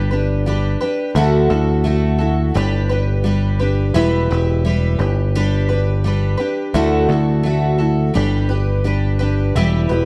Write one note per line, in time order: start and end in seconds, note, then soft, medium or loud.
0.00 0.75 G1 loud
0.00 0.10 G4 medium
0.11 0.46 D4 soft
0.11 0.46 G4 medium
0.11 0.45 B4 medium
0.46 0.80 G3 medium
0.46 0.81 D4 medium
0.46 0.80 G4 medium
0.46 0.80 B4 medium
0.81 1.16 D4 soft
0.81 1.16 G4 medium
0.81 1.15 B4 medium
1.15 1.48 D2 medium
1.15 1.50 D3 medium
1.15 1.50 A3 medium
1.15 1.50 E4 loud
1.15 1.50 F#4 loud
1.15 1.49 A4 medium
1.50 2.51 D2 loud
1.50 1.84 E4 soft
1.50 1.85 F#4 medium
1.50 1.85 A4 medium
1.84 2.19 A3 medium
1.84 2.20 E4 medium
1.84 2.19 F#4 medium
1.84 2.17 A4 medium
2.18 2.55 E4 medium
2.18 2.55 F#4 medium
2.18 2.54 A4 medium
2.54 3.91 G1 loud
2.54 2.89 G3 medium
2.54 2.90 D4 medium
2.54 2.90 G4 medium
2.54 2.88 B4 medium
2.89 3.24 D4 soft
2.89 3.25 G4 medium
2.89 3.24 B4 medium
3.24 3.59 G3 medium
3.24 3.60 D4 medium
3.24 3.59 G4 medium
3.24 3.58 B4 medium
3.59 3.95 D4 medium
3.59 3.94 G4 medium
3.59 3.94 B4 medium
3.94 4.27 E1 medium
3.94 4.29 E3 medium
3.94 4.29 G3 loud
3.94 4.30 E4 loud
3.94 4.30 G4 medium
3.94 4.29 B4 loud
4.30 4.96 E1 loud
4.30 4.63 E4 soft
4.30 4.65 G4 medium
4.30 4.65 B4 medium
4.65 4.99 G3 medium
4.65 5.00 E4 medium
4.65 5.00 G4 medium
4.65 4.98 B4 medium
4.99 6.35 G1 loud
4.99 5.35 D4 soft
4.99 5.34 G4 medium
4.99 5.34 B4 medium
5.35 5.70 G3 medium
5.35 5.70 D4 medium
5.35 5.69 G4 medium
5.35 5.68 B4 medium
5.69 6.04 D4 soft
5.69 6.05 G4 soft
5.69 6.04 B4 medium
6.04 6.39 G3 medium
6.04 6.39 D4 medium
6.04 6.39 G4 medium
6.04 6.36 B4 medium
6.37 6.74 D4 soft
6.37 6.75 G4 medium
6.37 6.73 B4 medium
6.74 7.07 D2 medium
6.74 7.09 D3 medium
6.74 7.10 A3 loud
6.74 7.09 E4 medium
6.74 7.10 F#4 medium
6.74 7.08 A4 loud
7.09 8.10 D2 loud
7.09 7.45 F#4 medium
7.09 7.44 A4 medium
7.13 7.44 E4 soft
7.43 7.79 A3 medium
7.43 7.80 E4 medium
7.43 7.79 F#4 medium
7.43 7.77 A4 medium
7.78 8.14 E4 soft
7.78 8.15 F#4 soft
7.78 8.14 A4 medium
8.14 9.51 G1 loud
8.14 8.49 G3 medium
8.14 8.50 D4 medium
8.14 8.50 G4 medium
8.14 8.48 B4 medium
8.49 8.84 D4 soft
8.49 8.84 G4 soft
8.49 8.84 B4 medium
8.84 9.19 G3 medium
8.84 9.20 D4 medium
8.84 9.19 G4 medium
8.84 9.18 B4 medium
9.19 9.55 D4 medium
9.19 9.55 G4 medium
9.19 9.54 B4 medium
9.55 9.88 E1 loud
9.55 9.90 E3 medium
9.55 9.90 G3 medium
9.55 9.90 E4 loud
9.55 9.90 G4 loud
9.55 9.88 B4 medium
9.89 10.05 E1 medium
9.89 10.05 E4 medium
9.89 10.05 G4 medium
9.89 10.05 B4 medium